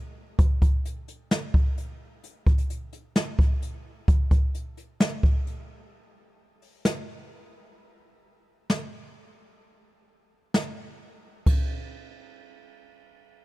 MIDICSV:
0, 0, Header, 1, 2, 480
1, 0, Start_track
1, 0, Tempo, 461538
1, 404, Time_signature, 4, 2, 24, 8
1, 13987, End_track
2, 0, Start_track
2, 0, Title_t, "Drums"
2, 403, Note_on_c, 9, 42, 74
2, 404, Note_on_c, 9, 36, 115
2, 507, Note_off_c, 9, 42, 0
2, 508, Note_off_c, 9, 36, 0
2, 643, Note_on_c, 9, 36, 94
2, 643, Note_on_c, 9, 42, 74
2, 747, Note_off_c, 9, 36, 0
2, 747, Note_off_c, 9, 42, 0
2, 887, Note_on_c, 9, 42, 76
2, 991, Note_off_c, 9, 42, 0
2, 1124, Note_on_c, 9, 42, 71
2, 1228, Note_off_c, 9, 42, 0
2, 1362, Note_on_c, 9, 42, 77
2, 1364, Note_on_c, 9, 38, 105
2, 1466, Note_off_c, 9, 42, 0
2, 1468, Note_off_c, 9, 38, 0
2, 1603, Note_on_c, 9, 36, 93
2, 1707, Note_off_c, 9, 36, 0
2, 1847, Note_on_c, 9, 42, 73
2, 1951, Note_off_c, 9, 42, 0
2, 2325, Note_on_c, 9, 42, 71
2, 2429, Note_off_c, 9, 42, 0
2, 2564, Note_on_c, 9, 36, 92
2, 2564, Note_on_c, 9, 42, 44
2, 2668, Note_off_c, 9, 36, 0
2, 2668, Note_off_c, 9, 42, 0
2, 2684, Note_on_c, 9, 42, 73
2, 2788, Note_off_c, 9, 42, 0
2, 2807, Note_on_c, 9, 42, 76
2, 2911, Note_off_c, 9, 42, 0
2, 3044, Note_on_c, 9, 42, 70
2, 3148, Note_off_c, 9, 42, 0
2, 3281, Note_on_c, 9, 42, 73
2, 3284, Note_on_c, 9, 38, 105
2, 3385, Note_off_c, 9, 42, 0
2, 3388, Note_off_c, 9, 38, 0
2, 3523, Note_on_c, 9, 36, 97
2, 3627, Note_off_c, 9, 36, 0
2, 3767, Note_on_c, 9, 42, 72
2, 3871, Note_off_c, 9, 42, 0
2, 4244, Note_on_c, 9, 36, 104
2, 4245, Note_on_c, 9, 42, 67
2, 4348, Note_off_c, 9, 36, 0
2, 4349, Note_off_c, 9, 42, 0
2, 4484, Note_on_c, 9, 36, 91
2, 4484, Note_on_c, 9, 42, 74
2, 4588, Note_off_c, 9, 36, 0
2, 4588, Note_off_c, 9, 42, 0
2, 4728, Note_on_c, 9, 42, 76
2, 4832, Note_off_c, 9, 42, 0
2, 4965, Note_on_c, 9, 42, 71
2, 5069, Note_off_c, 9, 42, 0
2, 5202, Note_on_c, 9, 42, 76
2, 5205, Note_on_c, 9, 38, 103
2, 5306, Note_off_c, 9, 42, 0
2, 5309, Note_off_c, 9, 38, 0
2, 5443, Note_on_c, 9, 36, 93
2, 5547, Note_off_c, 9, 36, 0
2, 5688, Note_on_c, 9, 42, 69
2, 5792, Note_off_c, 9, 42, 0
2, 6885, Note_on_c, 9, 46, 56
2, 6989, Note_off_c, 9, 46, 0
2, 7124, Note_on_c, 9, 44, 62
2, 7125, Note_on_c, 9, 38, 108
2, 7228, Note_off_c, 9, 44, 0
2, 7229, Note_off_c, 9, 38, 0
2, 9045, Note_on_c, 9, 38, 103
2, 9149, Note_off_c, 9, 38, 0
2, 10964, Note_on_c, 9, 38, 107
2, 11068, Note_off_c, 9, 38, 0
2, 11923, Note_on_c, 9, 36, 105
2, 11923, Note_on_c, 9, 51, 80
2, 12027, Note_off_c, 9, 36, 0
2, 12027, Note_off_c, 9, 51, 0
2, 13987, End_track
0, 0, End_of_file